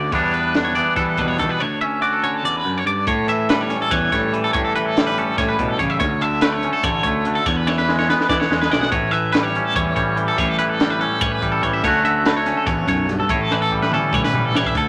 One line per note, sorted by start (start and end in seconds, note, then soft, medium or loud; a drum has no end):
0.00 0.11 D2 medium
0.00 0.12 D3 medium
0.00 0.11 C#4 medium
0.00 0.10 F#4 medium
0.00 0.12 D5 medium
0.12 1.57 E2 medium
0.12 0.80 E2 medium
0.12 0.75 E3 medium
0.12 0.97 G3 medium
0.12 0.33 B3 medium
0.12 0.55 D4 medium
0.12 0.33 C#5 medium
0.12 kick loud
0.12 closed hi-hat medium
0.33 0.75 B3 soft
0.33 0.55 B4 medium
0.33 closed hi-hat medium
0.54 2.02 D4 medium
0.54 snare medium
0.54 closed hi-hat medium
0.65 0.75 C#5 medium
0.75 1.58 E3 medium
0.75 1.39 B3 medium
0.75 0.96 D5 medium
0.75 closed hi-hat medium
0.96 1.19 E3 medium
0.96 1.61 G3 medium
0.96 1.18 A4 medium
0.96 kick loud
0.96 closed hi-hat medium
1.17 1.40 E2 medium
1.17 1.58 B2 medium
1.17 1.28 B4 medium
1.17 kick medium
1.17 closed hi-hat medium
1.28 1.39 C#5 medium
1.38 1.56 E3 medium
1.38 1.50 A3 medium
1.38 1.49 A4 medium
1.38 kick medium
1.38 snare soft
1.38 closed hi-hat soft
1.49 1.60 B3 soft
1.49 1.60 B4 medium
1.60 2.44 D2 medium
1.60 1.81 C#5 medium
1.81 2.22 C#4 medium
1.81 2.02 E5 medium
2.02 3.05 F#4 medium
2.02 2.13 D5 medium
2.13 2.23 A4 medium
2.23 3.07 D3 medium
2.23 3.05 C#4 soft
2.23 2.35 C#5 medium
2.35 2.45 A4 medium
2.44 2.65 E2 medium
2.44 2.56 D5 medium
2.56 2.78 B4 medium
2.65 2.85 F#2 medium
2.78 2.86 C#5 medium
2.85 3.07 G2 medium
2.85 3.07 D5 medium
3.07 4.54 A2 medium
3.07 3.74 A2 loud
3.07 3.28 C#5 medium
3.07 kick loud
3.07 closed hi-hat medium
3.28 3.90 E3 medium
3.28 3.50 E5 medium
3.28 closed hi-hat medium
3.49 4.12 G3 medium
3.49 3.61 B4 medium
3.49 snare loud
3.49 closed hi-hat medium
3.61 3.81 C#5 medium
3.70 5.01 C#4 medium
3.70 snare soft
3.70 closed hi-hat medium
3.82 3.91 A4 medium
3.91 4.08 E2 medium
3.91 4.33 E3 medium
3.91 4.11 C#5 medium
3.91 kick loud
3.91 snare soft
3.91 closed hi-hat medium
4.12 4.46 A2 medium
4.12 4.96 G3 medium
4.12 4.33 C#5 medium
4.12 kick medium
4.12 snare soft
4.12 closed hi-hat medium
4.33 4.76 E3 medium
4.33 closed hi-hat medium
4.44 4.53 A4 medium
4.53 5.21 A2 loud
4.53 5.38 A2 medium
4.53 4.64 C#5 medium
4.53 kick loud
4.53 closed hi-hat medium
4.65 4.75 A4 medium
4.75 6.03 E3 medium
4.75 4.86 B4 medium
4.75 closed hi-hat medium
4.86 5.06 A4 medium
4.97 6.01 G3 medium
4.97 snare loud
4.97 closed hi-hat medium
5.07 5.18 B4 medium
5.18 5.99 C#4 medium
5.18 5.38 A4 medium
5.18 closed hi-hat medium
5.38 5.54 A2 medium
5.38 5.59 A2 medium
5.38 5.48 C#5 medium
5.38 kick loud
5.38 snare soft
5.38 closed hi-hat medium
5.49 5.68 B4 medium
5.59 5.76 A2 medium
5.59 5.80 B2 medium
5.59 kick medium
5.59 closed hi-hat medium
5.68 5.79 A4 medium
5.79 5.96 A1 medium
5.79 6.01 C#3 medium
5.79 5.90 C#5 medium
5.79 kick medium
5.79 closed hi-hat medium
5.90 5.99 E5 medium
6.00 7.46 D2 medium
6.00 6.67 D2 loud
6.00 6.22 C#5 medium
6.00 kick loud
6.00 closed hi-hat medium
6.21 6.83 D3 medium
6.21 6.42 E5 medium
6.21 closed hi-hat medium
6.41 7.05 A3 medium
6.41 6.52 B4 medium
6.41 snare loud
6.41 closed hi-hat loud
6.52 6.73 C#5 medium
6.63 7.45 C#4 medium
6.63 closed hi-hat medium
6.73 6.84 A4 medium
6.83 7.00 A1 medium
6.83 7.25 D3 medium
6.83 7.02 C#5 medium
6.83 kick loud
6.83 snare soft
6.83 closed hi-hat medium
7.03 7.38 D2 medium
7.03 7.45 A3 medium
7.03 7.25 C#5 medium
7.03 kick medium
7.03 closed hi-hat medium
7.25 7.66 D3 medium
7.25 closed hi-hat medium
7.35 7.46 A4 medium
7.46 8.13 E2 loud
7.46 8.90 E2 medium
7.46 7.56 C#5 medium
7.46 kick loud
7.46 closed hi-hat medium
7.56 7.67 B4 medium
7.67 8.29 E3 medium
7.67 7.78 C#5 medium
7.67 snare medium
7.78 7.98 B4 medium
7.78 snare medium
7.89 8.49 G#3 medium
7.89 snare medium
7.99 8.09 C#5 medium
7.99 snare medium
8.09 8.95 B3 medium
8.09 8.29 B4 medium
8.09 snare medium
8.21 snare medium
8.29 8.70 E3 medium
8.29 8.46 E3 medium
8.29 8.39 D5 medium
8.29 kick loud
8.29 snare medium
8.40 8.61 C#5 medium
8.40 snare medium
8.50 8.67 E2 medium
8.50 8.90 G#3 medium
8.50 snare medium
8.61 8.71 B4 medium
8.61 snare medium
8.70 8.88 B1 medium
8.70 9.12 E3 medium
8.70 8.81 D5 medium
8.70 snare medium
8.81 8.91 F#5 medium
8.81 snare medium
8.92 9.59 A1 loud
8.92 10.36 A2 medium
8.92 9.11 C#5 medium
8.92 kick loud
8.92 closed hi-hat medium
9.11 9.76 E3 medium
9.11 9.32 E5 medium
9.11 closed hi-hat medium
9.32 9.96 G3 medium
9.32 9.43 B4 medium
9.32 snare loud
9.32 closed hi-hat medium
9.43 9.65 C#5 medium
9.55 10.84 C#4 medium
9.55 closed hi-hat medium
9.65 9.75 A4 medium
9.76 9.92 E2 medium
9.76 10.16 E3 medium
9.76 9.95 C#5 medium
9.76 kick loud
9.76 closed hi-hat medium
9.96 10.30 A1 medium
9.96 10.80 G3 medium
9.96 10.17 C#5 medium
9.96 kick medium
9.96 closed hi-hat medium
10.16 10.59 E3 medium
10.16 closed hi-hat medium
10.28 10.38 A4 medium
10.38 11.05 A1 medium
10.38 11.84 A2 medium
10.38 10.49 C#5 medium
10.38 kick loud
10.38 closed hi-hat medium
10.49 10.58 A4 medium
10.59 11.21 E3 medium
10.59 10.69 B4 medium
10.59 closed hi-hat medium
10.69 10.90 A4 medium
10.80 11.42 G3 medium
10.80 snare loud
10.80 closed hi-hat medium
10.90 11.00 B4 medium
11.00 11.86 C#4 medium
11.00 11.21 A4 medium
11.00 closed hi-hat medium
11.21 11.38 A2 medium
11.21 11.62 E3 medium
11.21 11.32 C#5 medium
11.21 kick loud
11.21 closed hi-hat loud
11.32 11.52 B4 medium
11.42 11.59 A1 medium
11.42 11.84 G3 medium
11.42 kick medium
11.42 closed hi-hat medium
11.52 11.63 A4 medium
11.63 11.80 A1 medium
11.63 11.84 E3 medium
11.63 11.73 C#5 medium
11.63 kick medium
11.63 closed hi-hat medium
11.73 11.84 E5 medium
11.84 12.67 D2 medium
11.84 12.50 D2 medium
11.84 12.02 D3 medium
11.84 12.25 A3 medium
11.84 12.46 C#4 soft
11.84 13.29 F#4 medium
11.84 12.05 C#5 medium
11.84 kick loud
11.84 closed hi-hat medium
12.04 13.29 D3 medium
12.04 12.26 E5 medium
12.04 closed hi-hat medium
12.25 13.72 A3 medium
12.25 12.36 B4 medium
12.25 snare loud
12.25 closed hi-hat medium
12.37 12.57 C#5 medium
12.46 13.75 C#4 medium
12.46 snare soft
12.46 closed hi-hat medium
12.57 12.66 A4 medium
12.66 12.83 A1 medium
12.66 12.87 E2 medium
12.66 12.87 C#5 medium
12.66 kick loud
12.66 closed hi-hat medium
12.87 13.21 B1 medium
12.87 13.08 F#2 medium
12.87 13.09 C#5 medium
12.87 kick medium
12.87 snare soft
12.87 closed hi-hat medium
13.09 13.30 G2 medium
13.09 snare soft
13.09 closed hi-hat medium
13.20 13.30 A4 medium
13.29 13.96 A1 loud
13.29 14.75 A2 medium
13.29 13.41 C#5 medium
13.29 kick loud
13.29 closed hi-hat medium
13.41 13.52 A4 medium
13.51 14.12 E3 medium
13.51 13.61 B4 medium
13.51 snare medium
13.62 13.82 A4 medium
13.71 14.34 G3 medium
13.71 kick medium
13.82 13.92 B4 medium
13.82 snare medium
13.92 14.73 C#4 medium
13.92 14.14 A4 medium
13.92 mid tom medium
14.13 14.29 A2 medium
14.13 14.54 E3 medium
14.13 14.24 C#5 medium
14.13 kick loud
14.13 mid tom medium
14.24 14.45 B4 medium
14.24 snare medium
14.33 14.50 A1 medium
14.33 14.76 G3 medium
14.33 mid tom medium
14.45 14.56 A4 medium
14.54 14.71 A1 medium
14.54 14.73 E3 medium
14.54 14.66 C#5 medium
14.54 snare medium
14.65 14.76 E5 medium
14.65 kick medium
14.75 14.88 D2 medium
14.75 14.88 A4 medium
14.75 kick medium
14.75 closed hi-hat medium